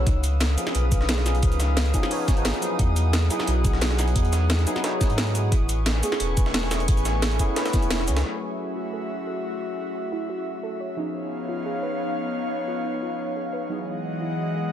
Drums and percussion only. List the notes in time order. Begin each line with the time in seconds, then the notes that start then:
0.07 kick, closed hi-hat
0.24 closed hi-hat, cabasa
0.41 snare, closed hi-hat
0.58 closed hi-hat, cabasa
0.67 snare
0.75 closed hi-hat
0.92 kick, closed hi-hat, cabasa
1.01 snare
1.09 snare, closed hi-hat
1.18 snare
1.26 snare, closed hi-hat, cabasa
1.35 closed hi-hat
1.43 kick, closed hi-hat
1.52 closed hi-hat, cabasa
1.60 snare, closed hi-hat, cabasa
1.77 snare, closed hi-hat
1.86 closed hi-hat
1.94 kick, closed hi-hat, cabasa
2.03 snare
2.11 closed hi-hat, open hi-hat
2.28 kick, snare, closed hi-hat, cabasa
2.37 closed hi-hat
2.45 snare, closed hi-hat
2.54 closed hi-hat
2.62 closed hi-hat, cabasa
2.79 kick, closed hi-hat
2.96 closed hi-hat, cabasa
3.13 snare, closed hi-hat
3.30 closed hi-hat, cabasa
3.39 snare
3.47 closed hi-hat
3.64 kick, closed hi-hat, cabasa
3.73 snare
3.81 snare, closed hi-hat
3.91 snare
3.99 snare, closed hi-hat, cabasa
4.08 closed hi-hat
4.16 kick, closed hi-hat
4.25 closed hi-hat
4.33 snare, closed hi-hat, cabasa
4.50 snare, closed hi-hat
4.59 closed hi-hat
4.67 closed hi-hat, cabasa
4.76 snare
4.84 snare, closed hi-hat
5.01 kick, snare, closed hi-hat, cabasa
5.10 closed hi-hat
5.18 snare, closed hi-hat
5.27 closed hi-hat
5.35 closed hi-hat, cabasa
5.52 kick, closed hi-hat
5.69 closed hi-hat, cabasa
5.86 snare, closed hi-hat
6.03 closed hi-hat, cabasa
6.12 snare
6.20 closed hi-hat
6.37 kick, closed hi-hat, cabasa
6.46 snare
6.54 snare, closed hi-hat
6.63 snare
6.71 snare, closed hi-hat, cabasa
6.80 closed hi-hat
6.88 kick, closed hi-hat
6.97 closed hi-hat, cabasa
7.05 snare, closed hi-hat, cabasa
7.22 snare, closed hi-hat
7.31 closed hi-hat
7.39 kick, closed hi-hat, cabasa
7.56 snare, closed hi-hat
7.66 snare, closed hi-hat
7.73 kick, snare, closed hi-hat, cabasa
7.82 closed hi-hat, cabasa
7.91 snare, closed hi-hat
8.00 snare
8.08 closed hi-hat, cabasa
8.17 snare, closed hi-hat